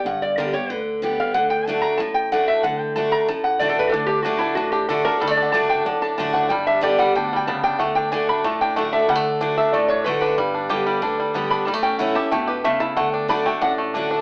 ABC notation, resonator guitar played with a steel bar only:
X:1
M:4/4
L:1/8
Q:1/4=186
K:D
V:1 name="Resonator guitar played with a steel bar"
f d _B c =B z2 =f | f g a _b a g f e | f g a _b a f (3d A =B | A G F E F G A _B |
(3A d f a g f a a f | g e d f (3g f g a g | f g ^g b a =g f e | f3 e d c B B- |
B4 z3 b | a g f a g B e a | f g b g f z3 |]